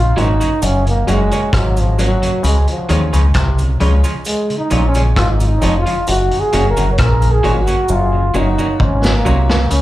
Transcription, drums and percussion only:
0.17 closed hi-hat medium
0.41 closed hi-hat soft
0.41 cabasa medium
0.62 closed hi-hat medium
0.62 cabasa medium
0.87 closed hi-hat medium
1.08 closed hi-hat medium
1.08 cabasa medium
1.31 closed hi-hat medium
1.31 cabasa medium
1.53 kick loud
1.53 cross-stick loud
1.53 closed hi-hat loud
1.77 closed hi-hat medium
1.77 cabasa medium
1.99 closed hi-hat medium
1.99 cabasa medium
2.22 closed hi-hat medium
2.44 closed hi-hat loud
2.44 cabasa medium
2.67 closed hi-hat medium
2.89 closed hi-hat medium
2.89 cabasa soft
3.13 closed hi-hat medium
3.13 cabasa medium
3.34 kick loud
3.34 cross-stick loud
3.34 closed hi-hat loud
3.58 closed hi-hat medium
3.58 cabasa soft
3.80 closed hi-hat medium
4.04 closed hi-hat soft
4.04 cabasa medium
4.25 closed hi-hat loud
4.25 cabasa medium
4.50 closed hi-hat soft
4.71 closed hi-hat medium
4.71 cabasa medium
4.94 closed hi-hat medium
4.94 cabasa medium
5.16 kick loud
5.16 cross-stick loud
5.16 closed hi-hat medium
5.40 closed hi-hat medium
5.40 cabasa medium
5.62 closed hi-hat medium
5.62 cabasa medium
5.86 closed hi-hat medium
6.07 closed hi-hat loud
6.07 cabasa medium
6.31 closed hi-hat medium
6.53 closed hi-hat medium
6.53 cabasa medium
6.77 closed hi-hat medium
6.77 cabasa medium
6.98 kick loud
6.98 cross-stick loud
6.98 closed hi-hat medium
7.22 closed hi-hat medium
7.22 cabasa soft
7.44 closed hi-hat medium
7.67 closed hi-hat soft
7.67 cabasa medium
7.88 cabasa medium
8.34 cabasa medium
8.59 cabasa medium
8.80 kick loud
9.04 snare medium
9.04 cabasa medium
9.26 cabasa medium
9.50 snare loud
9.70 closed hi-hat medium
9.70 cabasa medium

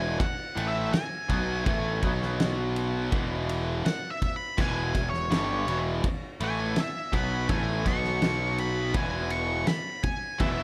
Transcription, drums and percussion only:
0.20 kick loud
0.20 ride loud
0.57 ride medium
0.93 snare loud
0.93 ride loud
1.29 kick medium
1.29 ride medium
1.66 kick loud
1.66 ride loud
2.03 kick medium
2.03 ride medium
2.22 snare soft
2.40 snare loud
2.40 ride loud
2.76 ride medium
3.12 kick loud
3.12 ride loud
3.49 ride medium
3.86 snare loud
3.86 ride loud
4.22 kick medium
4.22 ride medium
4.58 kick loud
4.58 crash loud
4.95 kick medium
4.95 snare soft
4.95 ride medium
5.14 snare soft
5.32 snare loud
5.32 ride loud
5.68 ride medium
6.04 kick loud
6.04 ride loud
6.40 ride medium
6.76 snare loud
6.76 ride loud
7.13 kick medium
7.13 ride medium
7.49 kick loud
7.49 ride loud
7.86 kick medium
7.86 snare soft
7.86 ride medium
8.04 snare soft
8.22 snare loud
8.22 ride loud
8.58 ride medium
8.94 kick loud
8.94 ride loud
9.30 ride medium
9.67 snare loud
9.67 ride loud
10.03 kick medium
10.03 ride medium
10.40 kick loud
10.40 ride loud

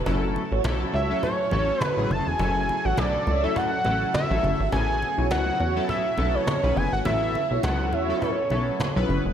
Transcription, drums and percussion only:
0.06 cajon bass loud
0.06 muted conga medium
0.23 cajon slap soft
0.35 cajon slap soft
0.35 muted conga soft
0.51 cajon slap soft
0.64 cajon bass loud
0.64 cajon slap loud
0.64 cajon slap medium
0.64 high conga medium
0.81 cajon slap soft
0.94 cajon slap soft
1.23 cajon bass loud
1.40 cajon slap soft
1.51 muted conga medium
1.51 low conga medium
1.81 cajon bass loud
1.81 cajon slap loud
1.81 high conga medium
2.11 high conga medium
2.27 cajon slap soft
2.39 cajon bass loud
2.39 muted conga medium
2.56 cajon slap soft
2.69 cajon slap soft
2.69 muted conga soft
2.97 cajon bass loud
2.97 cajon slap loud
2.97 cajon slap medium
2.97 high conga medium
3.14 cajon slap soft
3.27 cajon slap soft
3.27 muted conga soft
3.27 low conga medium
3.56 cajon bass loud
3.73 cajon slap soft
3.85 cajon slap soft
3.85 muted conga medium
4.01 cajon slap soft
4.14 cajon bass loud
4.14 cajon slap loud
4.14 high conga medium
4.44 high conga medium
4.60 cajon slap soft
4.72 cajon bass loud
4.72 muted conga medium
4.89 cajon slap soft
5.02 cajon slap soft
5.02 muted conga medium
5.31 cajon bass loud
5.31 cajon slap loud
5.31 cajon slap medium
5.31 high conga medium
5.47 cajon slap soft
5.60 cajon slap soft
5.60 muted conga soft
5.89 cajon bass loud
6.06 cajon slap soft
6.18 cajon slap soft
6.18 muted conga soft
6.18 low conga medium
6.34 cajon slap soft
6.47 cajon bass loud
6.47 cajon slap loud
6.47 high conga medium
6.77 high conga medium
7.05 cajon bass loud
7.05 muted conga medium
7.22 cajon slap soft
7.34 cajon slap soft
7.34 muted conga medium
7.51 cajon slap soft
7.63 cajon bass loud
7.63 cajon slap loud
7.63 high conga medium
7.80 cajon slap soft
7.93 cajon slap soft
7.93 low conga medium
8.22 cajon bass loud
8.39 cajon slap soft
8.50 muted conga medium
8.67 cajon slap soft
8.80 cajon bass loud
8.80 cajon slap loud
8.80 high conga medium
8.97 cajon slap soft
9.10 high conga medium
9.26 cajon slap soft

